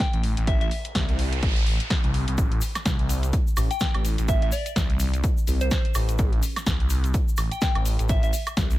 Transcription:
0.00 kick, snare, closed hi-hat
0.13 A1, closed hi-hat
0.23 open hi-hat
0.37 A1, closed hi-hat
0.47 E5, kick, closed hi-hat, noise sweep
0.61 E5, closed hi-hat
0.71 open hi-hat
0.85 closed hi-hat
0.95 C2, kick, snare, closed hi-hat
1.09 C2, closed hi-hat
1.19 open hi-hat
1.33 closed hi-hat
1.43 A1, kick, closed hi-hat
1.56 closed hi-hat
1.66 open hi-hat
1.80 closed hi-hat
1.90 kick, snare, closed hi-hat
2.04 C2, closed hi-hat
2.14 open hi-hat
2.28 C2, closed hi-hat
2.38 A1, kick, closed hi-hat, shaker
2.52 closed hi-hat
2.61 open hi-hat, shaker
2.75 snare, closed hi-hat, high woodblock, shaker
2.85 C2, kick, snare, closed hi-hat, shaker
2.99 C2, closed hi-hat
3.09 open hi-hat, shaker
3.23 closed hi-hat, shaker
3.33 kick, closed hi-hat, shaker
3.47 shaker
3.57 A1, open hi-hat, high woodblock, shaker
3.71 G5, closed hi-hat, shaker
3.80 G5, kick, snare, closed hi-hat, shaker
3.94 A1, closed hi-hat, high woodblock
4.05 open hi-hat, shaker
4.18 A1, closed hi-hat, shaker
4.28 E5, kick, closed hi-hat, shaker
4.42 E5, closed hi-hat
4.52 D5, open hi-hat, shaker
4.66 closed hi-hat, shaker
4.76 C2, kick, snare, closed hi-hat, shaker
4.90 C2, closed hi-hat
5.00 open hi-hat, shaker
5.14 closed hi-hat, shaker
5.24 kick, closed hi-hat, shaker
5.37 shaker
5.47 C2, open hi-hat, shaker
5.60 C5, closed hi-hat, shaker
5.71 kick, snare, closed hi-hat, shaker
5.85 closed hi-hat
5.94 A1, open hi-hat, high woodblock, shaker
6.09 closed hi-hat, shaker
6.18 A1, kick, closed hi-hat, shaker
6.33 closed hi-hat
6.43 open hi-hat, shaker
6.56 snare, closed hi-hat, high woodblock, shaker
6.66 C2, kick, snare, closed hi-hat, shaker
6.80 C2, closed hi-hat
6.90 open hi-hat, shaker
7.04 closed hi-hat, shaker
7.14 kick, closed hi-hat, shaker
7.28 shaker
7.37 A1, open hi-hat, high woodblock, shaker
7.51 G5, closed hi-hat, shaker
7.61 G5, kick, snare, closed hi-hat, shaker
7.75 A1, closed hi-hat, high woodblock
7.85 open hi-hat, shaker
7.99 A1, closed hi-hat, shaker
8.09 E5, kick, closed hi-hat, shaker
8.23 E5, closed hi-hat, shaker
8.33 open hi-hat, shaker
8.46 closed hi-hat, high woodblock, shaker
8.57 C2, kick, snare, closed hi-hat, shaker
8.71 C2, closed hi-hat, shaker

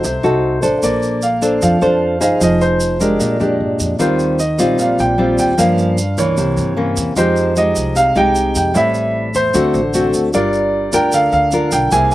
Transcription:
Already playing: C5
0.04 C2 C3, shaker
0.23 C2 D#4 F#4 A4, shaker
0.62 A1 D4 A4 C5, shaker
0.82 A#1 A#3 D5, shaker
1.02 shaker
1.22 F5, shaker
1.42 D4 A4 C5, shaker
1.62 F2 F3 F5, shaker
1.82 F2 D4 A4 C5, shaker
2.21 G1 D#4 G#4 C5 F5, shaker
2.40 F1 F3 D#5, shaker
2.61 C5, shaker
2.80 shaker
3.00 G#3 D4 G4 A#4, shaker
3.20 A#1 A#2, shaker
3.40 F2 G#3 D4 G4, shaker
3.60 G2
3.79 F2, shaker
3.99 D#2 D#3 G3 C4 F4 C5, shaker
4.19 shaker
4.39 D#5, shaker
4.58 A#1 G3 C4 F4, shaker
4.78 A#2 F5, shaker
4.99 A#1 G5, shaker
5.18 G3 C4 F4
5.38 D#2 G5, shaker
5.58 G2 F3 A#3 C#4 F5, shaker
5.78 shaker
5.98 shaker
6.18 C#2 E3 A#3 C#5, shaker
6.37 C2 C3, shaker
6.57 G2, shaker
6.77 E3 A#3 C#4
6.97 E2, shaker
7.16 F2 F3 G#3 D#4 G4 C5, shaker
7.36 shaker
7.56 G#3 D#4 G4 D#5, shaker
7.76 C2, shaker
7.95 C3 F5, shaker
8.16 C2 G#3 D#4 G4 G5, shaker
8.35 shaker
8.55 F2 G5, shaker
8.74 A1 A2 G3 C4 E4 E5, shaker
8.94 shaker
9.34 E2 C5, shaker
9.54 D2 D3 A3 C4 F#4, shaker
9.74 A1, shaker
9.94 A3 C4 F#4, shaker
10.14 D2, shaker
10.33 G1 G3 D4 F4 A#4 D5, shaker
10.53 shaker
10.93 D2 D4 F4 A#4 G5, shaker
11.12 D3 F5, shaker
11.32 D2 F5, shaker
11.51 D4 F4 A#4, shaker
11.72 B1 G5, shaker
11.91 C2 C3 A#3 E4 G#4 G#5, shaker
12.11 shaker

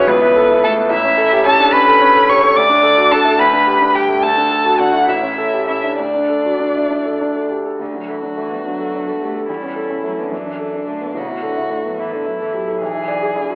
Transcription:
Already playing: B1 E4 F#4 G#4 B4 C#5
0.07 C#2 B3 B4
0.22 E4
0.36 A4
0.50 E4
0.63 A3 A4
0.77 B3
0.90 A1 E4 E5
1.04 C#4
1.18 A4
1.33 G4
1.46 C#4 A4 A5
1.60 D4
1.72 C#4 B4 B5
1.88 A4
2.01 C#4
2.15 A4
2.29 G4 C#5 C#6
2.43 A4
2.56 D2 D5 D6
2.69 D4
2.83 A4
2.97 F#4
3.11 D4 A4 A5
3.25 E4
3.39 D2 B4 B5
3.53 D4
3.67 G4
3.81 D4
3.94 G3 G4 G5
4.09 A3
4.22 D2 A4 A5
4.37 D4
4.51 A4
4.65 F#4
4.79 D4 F#4 F#5
4.93 E4
5.08 A1 E4 E5
5.23 C#4
5.38 A4
5.53 G4
5.67 C#4 E4 E5
5.83 D4
5.98 D2 D4 D5
6.14 D4
6.30 A4
6.46 F#4
6.60 D4
6.76 E4
6.91 D4
7.05 A4
7.21 D4
7.36 A4
7.50 G4
7.66 A4
7.79 D2 D3 F#4
7.94 F#3 D4
8.08 E3 A4
8.22 F#3 D4
8.37 E3 A3
8.51 G3 B3
8.66 F#3 D4
8.80 A4
8.94 D4
9.08 G3 A4
9.21 A3 G4
9.35 A4
9.48 E2 G3 E4
9.63 C#4
9.76 A4
9.90 C#4
10.03 F#3 A3
10.19 D3 B3
10.32 F#2 E3 D4
10.46 D4
10.59 A4
10.73 D4
10.86 D3 A3
11.01 B3
11.15 A1 C#3 F#4
11.29 B2 E4
11.42 D3 A4
11.56 C#3 E4
11.70 D3 A3
11.85 F#3 B3
11.98 E3 E4
12.13 D3 A4
12.26 F#3 E4
12.40 E3 A4
12.53 F#3 G4
12.68 A4
12.81 B1 E3 G#4
12.95 E4
13.08 D5
13.22 G#4
13.35 D3 E4
13.49 F#4

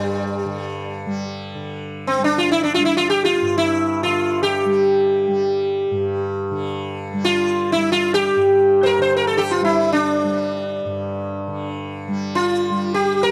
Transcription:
Already playing: G2 D3 G3
0.45 D3
1.06 G3
1.55 D3
2.07 C4
2.18 G3
2.24 D4
2.38 F4
2.52 E4
2.64 D4
2.74 F4
2.79 G3
2.85 E4
2.97 F4
3.10 G4
3.25 F4
3.42 G2
3.58 E4
4.03 D3 F4
4.43 G4
4.65 G3
5.27 G3
5.91 G2
6.51 D3
7.13 G3
7.25 F4
7.72 G3 E4
7.92 F4
8.14 G4
8.36 G2
8.83 A#4 C5
8.98 D3 C5
9.17 A#4
9.27 A4
9.37 G4 A4
9.51 F4
9.61 G3 E4
9.93 D4
10.24 G3
10.85 G2
11.47 D3
12.08 G3
12.35 F4
12.70 G3
12.94 G4
13.23 A#4

